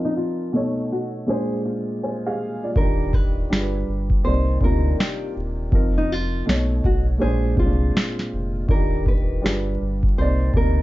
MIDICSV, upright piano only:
0, 0, Header, 1, 2, 480
1, 0, Start_track
1, 0, Key_signature, -3, "major"
1, 0, Tempo, 740741
1, 1790, Time_signature, 4, 2, 24, 8
1, 7013, End_track
2, 0, Start_track
2, 0, Title_t, "Upright piano"
2, 0, Program_c, 0, 0
2, 0, Note_on_c, 0, 53, 80
2, 0, Note_on_c, 0, 60, 64
2, 0, Note_on_c, 0, 63, 67
2, 0, Note_on_c, 0, 70, 79
2, 7, Control_c, 0, 64, 127
2, 341, Note_on_c, 0, 47, 78
2, 345, Note_off_c, 0, 63, 0
2, 346, Note_off_c, 0, 53, 0
2, 348, Note_on_c, 0, 57, 69
2, 350, Note_off_c, 0, 60, 0
2, 354, Note_on_c, 0, 63, 71
2, 357, Note_off_c, 0, 70, 0
2, 358, Control_c, 0, 64, 0
2, 362, Note_on_c, 0, 73, 83
2, 481, Control_c, 0, 64, 127
2, 756, Note_off_c, 0, 47, 0
2, 760, Note_off_c, 0, 57, 0
2, 763, Note_off_c, 0, 63, 0
2, 767, Note_off_c, 0, 73, 0
2, 819, Note_on_c, 0, 46, 76
2, 829, Note_on_c, 0, 56, 72
2, 833, Note_on_c, 0, 62, 65
2, 838, Control_c, 0, 64, 0
2, 844, Note_on_c, 0, 72, 73
2, 957, Control_c, 0, 64, 127
2, 1310, Note_off_c, 0, 72, 0
2, 1317, Note_on_c, 0, 80, 55
2, 1320, Note_on_c, 0, 72, 47
2, 1427, Note_off_c, 0, 46, 0
2, 1432, Note_off_c, 0, 56, 0
2, 1434, Note_off_c, 0, 62, 0
2, 1459, Note_off_c, 0, 80, 0
2, 1461, Note_off_c, 0, 72, 0
2, 1467, Note_on_c, 0, 77, 67
2, 1471, Note_on_c, 0, 68, 62
2, 1694, Note_off_c, 0, 77, 0
2, 1695, Note_off_c, 0, 68, 0
2, 1709, Note_on_c, 0, 74, 58
2, 1712, Note_on_c, 0, 65, 44
2, 1785, Note_on_c, 0, 51, 69
2, 1787, Note_off_c, 0, 65, 0
2, 1791, Note_on_c, 0, 62, 67
2, 1797, Note_on_c, 0, 65, 67
2, 1799, Control_c, 0, 64, 0
2, 1808, Note_on_c, 0, 67, 73
2, 1931, Control_c, 0, 64, 127
2, 1934, Note_off_c, 0, 74, 0
2, 2262, Note_off_c, 0, 62, 0
2, 2267, Note_on_c, 0, 55, 67
2, 2268, Note_off_c, 0, 51, 0
2, 2270, Note_off_c, 0, 65, 0
2, 2272, Note_on_c, 0, 62, 58
2, 2277, Control_c, 0, 64, 0
2, 2279, Note_off_c, 0, 67, 0
2, 2279, Note_on_c, 0, 65, 59
2, 2286, Note_on_c, 0, 68, 56
2, 2329, Note_on_c, 0, 71, 76
2, 2332, Note_off_c, 0, 68, 0
2, 2391, Control_c, 0, 64, 127
2, 2679, Note_off_c, 0, 55, 0
2, 2682, Note_off_c, 0, 62, 0
2, 2685, Note_off_c, 0, 65, 0
2, 2710, Note_off_c, 0, 71, 0
2, 2743, Note_on_c, 0, 48, 69
2, 2749, Note_on_c, 0, 58, 62
2, 2756, Note_on_c, 0, 63, 60
2, 2760, Control_c, 0, 64, 0
2, 2766, Note_on_c, 0, 74, 68
2, 2853, Control_c, 0, 64, 127
2, 2952, Note_off_c, 0, 48, 0
2, 2955, Note_off_c, 0, 58, 0
2, 2958, Note_off_c, 0, 63, 0
2, 2963, Note_off_c, 0, 74, 0
2, 2981, Note_on_c, 0, 48, 77
2, 2988, Note_on_c, 0, 58, 68
2, 2993, Note_on_c, 0, 62, 49
2, 3004, Note_on_c, 0, 65, 72
2, 3039, Note_on_c, 0, 63, 61
2, 3046, Note_off_c, 0, 62, 0
2, 3484, Note_off_c, 0, 48, 0
2, 3487, Note_off_c, 0, 58, 0
2, 3496, Note_off_c, 0, 65, 0
2, 3513, Note_off_c, 0, 63, 0
2, 3701, Note_on_c, 0, 53, 65
2, 3709, Note_on_c, 0, 60, 62
2, 3717, Note_on_c, 0, 63, 57
2, 3719, Control_c, 0, 64, 0
2, 3724, Note_on_c, 0, 70, 77
2, 3812, Control_c, 0, 64, 127
2, 4183, Note_on_c, 0, 47, 75
2, 4186, Note_off_c, 0, 53, 0
2, 4189, Note_off_c, 0, 60, 0
2, 4189, Note_off_c, 0, 63, 0
2, 4191, Note_on_c, 0, 57, 61
2, 4197, Note_off_c, 0, 70, 0
2, 4199, Control_c, 0, 64, 0
2, 4199, Note_on_c, 0, 63, 61
2, 4205, Note_on_c, 0, 73, 73
2, 4314, Control_c, 0, 64, 127
2, 4597, Note_off_c, 0, 47, 0
2, 4601, Note_off_c, 0, 57, 0
2, 4605, Note_off_c, 0, 63, 0
2, 4608, Note_off_c, 0, 73, 0
2, 4653, Note_on_c, 0, 46, 73
2, 4661, Note_on_c, 0, 56, 63
2, 4668, Note_on_c, 0, 62, 65
2, 4675, Note_on_c, 0, 72, 71
2, 4678, Control_c, 0, 64, 0
2, 4793, Control_c, 0, 64, 127
2, 4867, Note_off_c, 0, 46, 0
2, 4871, Note_off_c, 0, 56, 0
2, 4874, Note_off_c, 0, 62, 0
2, 4878, Note_off_c, 0, 72, 0
2, 4898, Note_on_c, 0, 46, 69
2, 4907, Note_on_c, 0, 56, 57
2, 4913, Note_on_c, 0, 60, 51
2, 4920, Note_on_c, 0, 65, 81
2, 4957, Note_on_c, 0, 62, 68
2, 4965, Note_off_c, 0, 60, 0
2, 5403, Note_off_c, 0, 46, 0
2, 5407, Note_off_c, 0, 56, 0
2, 5413, Note_off_c, 0, 65, 0
2, 5432, Note_off_c, 0, 62, 0
2, 5624, Note_on_c, 0, 51, 70
2, 5632, Note_on_c, 0, 62, 62
2, 5636, Note_on_c, 0, 65, 66
2, 5640, Control_c, 0, 64, 0
2, 5647, Note_on_c, 0, 67, 76
2, 5752, Control_c, 0, 64, 127
2, 6100, Note_off_c, 0, 62, 0
2, 6102, Note_on_c, 0, 55, 70
2, 6104, Note_off_c, 0, 65, 0
2, 6107, Note_off_c, 0, 51, 0
2, 6110, Note_on_c, 0, 62, 62
2, 6114, Note_on_c, 0, 65, 66
2, 6117, Control_c, 0, 64, 0
2, 6119, Note_off_c, 0, 67, 0
2, 6120, Note_on_c, 0, 68, 66
2, 6164, Note_on_c, 0, 71, 68
2, 6169, Note_off_c, 0, 68, 0
2, 6235, Control_c, 0, 64, 127
2, 6517, Note_off_c, 0, 55, 0
2, 6521, Note_off_c, 0, 62, 0
2, 6522, Note_off_c, 0, 65, 0
2, 6548, Note_off_c, 0, 71, 0
2, 6594, Note_on_c, 0, 48, 64
2, 6597, Control_c, 0, 64, 0
2, 6600, Note_on_c, 0, 58, 59
2, 6609, Note_on_c, 0, 63, 57
2, 6616, Note_on_c, 0, 74, 83
2, 6712, Control_c, 0, 64, 127
2, 6798, Note_off_c, 0, 48, 0
2, 6801, Note_off_c, 0, 58, 0
2, 6805, Note_off_c, 0, 63, 0
2, 6809, Note_off_c, 0, 74, 0
2, 6827, Note_on_c, 0, 48, 71
2, 6834, Note_on_c, 0, 58, 60
2, 6842, Note_on_c, 0, 63, 66
2, 6850, Note_on_c, 0, 70, 73
2, 7013, Note_off_c, 0, 48, 0
2, 7013, Note_off_c, 0, 58, 0
2, 7013, Note_off_c, 0, 63, 0
2, 7013, Note_off_c, 0, 70, 0
2, 7013, End_track
0, 0, End_of_file